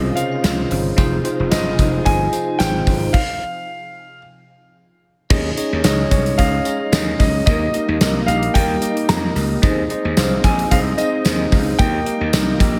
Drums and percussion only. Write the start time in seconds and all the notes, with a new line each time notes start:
0.17 closed hi-hat, tambourine
0.44 snare, closed hi-hat, tambourine
0.71 open hi-hat, tambourine
0.98 kick, closed hi-hat, tambourine
1.25 closed hi-hat, tambourine
1.52 snare, closed hi-hat, tambourine
1.79 kick, closed hi-hat, tambourine
2.06 kick, closed hi-hat
2.33 closed hi-hat, tambourine
2.60 snare, closed hi-hat, tambourine
2.87 kick, open hi-hat, tambourine
3.14 kick, crash
5.30 kick, crash, tambourine
5.57 closed hi-hat, tambourine
5.84 snare, closed hi-hat, tambourine
6.11 kick, closed hi-hat, tambourine
6.26 closed hi-hat
6.39 kick, closed hi-hat
6.65 closed hi-hat, tambourine
6.93 snare, closed hi-hat, tambourine
7.20 kick, open hi-hat, tambourine
7.47 kick, closed hi-hat, tambourine
7.74 closed hi-hat, tambourine
8.01 snare, closed hi-hat, tambourine
8.28 closed hi-hat, tambourine
8.43 closed hi-hat
8.55 kick, closed hi-hat, tambourine
8.82 closed hi-hat, tambourine
8.97 closed hi-hat
9.09 snare, closed hi-hat, tambourine
9.36 open hi-hat, tambourine
9.63 kick, closed hi-hat, tambourine
9.90 closed hi-hat
10.17 snare, closed hi-hat, tambourine
10.44 kick, closed hi-hat, tambourine
10.59 closed hi-hat
10.71 kick, closed hi-hat
10.98 closed hi-hat, tambourine
11.25 snare, closed hi-hat, tambourine
11.52 kick, open hi-hat, tambourine
11.79 kick, closed hi-hat, tambourine
12.06 closed hi-hat
12.33 snare, closed hi-hat, tambourine
12.60 kick, closed hi-hat, tambourine